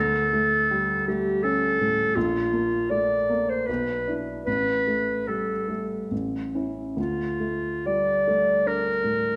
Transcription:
Already playing: D2 A4
0.33 A3
0.71 G3
1.08 A3 G4
1.43 C#4 A4
1.80 A2
2.16 A#1 F4
2.53 A#3
2.90 A3 D5
3.30 A#3
3.49 C5
3.67 B1 B4
4.08 D4 E4
4.46 A1 B4
4.87 A3
5.28 G3 A4
5.68 A3
6.11 A1
6.55 C#4 E4
6.97 D2 F4
7.40 A3
7.86 G3 D5
8.28 A3
8.66 D4 A#4
9.04 A2

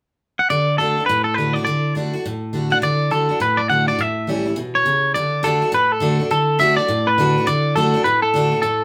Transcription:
0.39 F#5
0.50 D3 D5
0.78 D3 A3 D4 F#4 A4
0.97 D4 F#4
1.06 A2 B4
1.24 A4
1.34 D3 A3 B4
1.39 D4 F#4
1.53 F#4 D5
1.59 D4
1.65 D3 D5
1.95 D3 A3 D4 F#4
2.13 D4 F#4
2.25 A2
2.53 D3 A3 D4 F#4
2.70 D4 F#4 F#5
2.82 D3 D5
3.11 D3 A3 D4 F#4 A4
3.29 D4 F#4
3.40 A2 B4
3.57 D5
3.70 D3 A3 D4 F#4 F#5
3.88 D4 F#4 D5
3.99 A2 E5
4.27 E3 G3 C#4 E4
4.45 C#4 E4
4.56 B2
4.75 C#5
4.86 C#3
5.14 D3 D5
5.43 D3 A3 D4 F#4 A4
5.62 D4 F#4
5.72 A2 B4
5.92 A4
6.00 D3 A3 D4 F#4
6.20 D4 F#4
6.31 D3 A4
6.59 D3 A3 D4 F#4 E5
6.77 D4 F#4 D5
6.88 A2
7.07 B4
7.18 D3 A3 D4 F#4
7.38 D4 F#4
7.47 D3 D5
7.76 D3 A3 D4 F#4 A4
7.94 D4 F#4
8.04 A2 B4
8.22 A4
8.34 D3 A3 D4 F#4
8.51 D4 F#4
8.62 A2 A4

